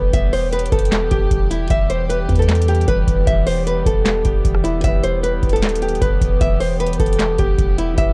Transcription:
Already playing: E1 E3 G3 B3 G4 B4
0.13 E1 E5, kick, closed hi-hat
0.33 C5, open hi-hat
0.53 B4, closed hi-hat
0.59 closed hi-hat
0.66 closed hi-hat
0.72 E1 A4, kick, closed hi-hat
0.79 closed hi-hat
0.85 closed hi-hat
0.92 snare, clap, closed hi-hat
1.11 E1 G4, kick, closed hi-hat
1.31 E1, kick, closed hi-hat
1.51 E4, closed hi-hat
1.70 E1 B3 E5, kick, closed hi-hat
1.90 C5, closed hi-hat
2.09 B4, closed hi-hat
2.29 E2, kick, closed hi-hat
2.36 A4, closed hi-hat
2.42 closed hi-hat
2.49 snare, clap, closed hi-hat
2.55 closed hi-hat
2.62 closed hi-hat
2.68 G4, closed hi-hat
2.75 closed hi-hat
2.81 closed hi-hat
2.88 E1 B4, kick, closed hi-hat
3.07 E1, kick, closed hi-hat
3.27 E1 E5, kick, closed hi-hat
3.47 C5, open hi-hat
3.67 B4, closed hi-hat
3.86 E1 A4, kick, closed hi-hat
4.05 snare, clap, closed hi-hat
4.25 E1 G4, kick, closed hi-hat
4.45 E1, kick, closed hi-hat
4.55 cross-stick
4.64 E4, closed hi-hat
4.80 E1 E3 E4 G4 E5, kick, closed hi-hat
4.85 G4 B4
5.04 C5, closed hi-hat
5.23 B4, closed hi-hat
5.43 D#1, kick, closed hi-hat
5.49 A4, closed hi-hat
5.56 closed hi-hat
5.62 snare, clap, closed hi-hat
5.69 closed hi-hat
5.75 closed hi-hat
5.82 G4, closed hi-hat
5.89 closed hi-hat
5.95 closed hi-hat
6.02 E1 B4, kick, closed hi-hat
6.21 E1, kick, closed hi-hat
6.41 E1 E5, kick, closed hi-hat
6.60 C5, open hi-hat
6.80 B4, closed hi-hat
6.87 closed hi-hat
6.93 closed hi-hat
7.00 E1 A4, kick, closed hi-hat
7.06 closed hi-hat
7.13 closed hi-hat
7.19 snare, clap, closed hi-hat
7.38 E1 G4, kick, closed hi-hat
7.58 E1, kick, closed hi-hat
7.78 E4, closed hi-hat
7.94 E1 E3 G3 E4, kick, closed hi-hat
7.98 G4 B4 E5

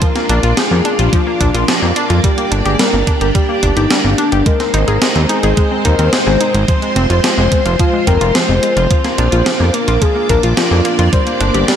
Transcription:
Already playing: F4
0.02 F3 A#3 D4 A#4 D5, kick, closed hi-hat
0.16 A#3, snare, closed hi-hat
0.29 A#1 D4, closed hi-hat
0.43 A#1 F4, closed hi-hat
0.57 F3 G#4, snare, closed hi-hat
0.71 F2 A#3
0.85 D4, closed hi-hat
0.99 A#1 F4 G4, closed hi-hat
1.13 F3 F4, kick, closed hi-hat
1.27 A#3
1.41 A#1 D4, kick, closed hi-hat
1.54 A#1 F4, closed hi-hat
1.68 F3, snare, closed hi-hat
1.82 F2 A#3
1.96 D4, closed hi-hat
2.10 F2 F4, closed hi-hat
2.24 G3 D4 G4, kick, closed hi-hat
2.38 A#3, closed hi-hat
2.52 G1 D4, closed hi-hat
2.65 G1 G4 G#4, closed hi-hat
2.79 G3 A#4, snare, closed hi-hat
2.93 G1 A#3
3.07 D4, kick, closed hi-hat
3.21 G1 G4 A#4, closed hi-hat
3.35 G3 G4, kick, closed hi-hat
3.49 A#3
3.63 G1 D4, kick, closed hi-hat
3.76 G1 D#4 G4, closed hi-hat
3.90 G3 D4, snare, closed hi-hat
4.04 G1 A#3
4.18 D4, closed hi-hat
4.32 G1 G4, closed hi-hat
4.46 G#3 C4 D#4 A#4 C5, kick, closed hi-hat
4.60 C4, snare, closed hi-hat
4.74 G#1 D#4, closed hi-hat
4.88 G#1 G#4, closed hi-hat
5.02 G#3, snare, closed hi-hat
5.15 D#2 C4, closed hi-hat
5.29 D#4 G#4, closed hi-hat
5.43 G#1 G#4, closed hi-hat
5.57 G#3, kick, closed hi-hat
5.71 C4
5.85 D#2 D#4 A#4, kick, closed hi-hat
5.99 D#2 C4, closed hi-hat
6.13 G#4 C5, snare, closed hi-hat
6.27 G#1 G#4
6.40 D#4, closed hi-hat
6.54 G#1 G#3, closed hi-hat
6.68 F3 F4 C5, kick, closed hi-hat
6.82 G#3, closed hi-hat
6.96 F1 C4, closed hi-hat
7.10 F1 F4, closed hi-hat
7.24 F3, snare, closed hi-hat
7.38 F1 G#3
7.52 G#3, kick, closed hi-hat
7.66 F1 F4, closed hi-hat
7.79 F3 F4, kick, closed hi-hat
7.93 G#3
8.07 F1 C4 A#4, kick, closed hi-hat
8.21 F1 F4, closed hi-hat
8.35 F3 C5, snare, closed hi-hat
8.49 F1 G#3
8.63 G#3, closed hi-hat
8.77 F1 F4, closed hi-hat
8.91 F3 A#3 D4 C5 D5, kick, closed hi-hat
9.04 A#3, snare, closed hi-hat
9.18 A#1 D4, closed hi-hat
9.32 A#1 F4, closed hi-hat
9.46 F3, snare, closed hi-hat
9.60 F2 A#3
9.74 A#3 A#4, closed hi-hat
9.88 A#1 F4, closed hi-hat
10.02 F3 G#4, kick, closed hi-hat
10.15 A#3
10.29 A#1 D4 A#4, kick, closed hi-hat
10.43 A#1 F4, closed hi-hat
10.57 F3 F4, snare, closed hi-hat
10.71 F2 A#3
10.85 A#3, closed hi-hat
10.99 F2 F4, closed hi-hat
11.13 G3 G4 C5, kick, closed hi-hat
11.27 A#3, closed hi-hat
11.41 G1 D4, closed hi-hat
11.54 G1 G4, closed hi-hat
11.68 G3 G4, snare, closed hi-hat

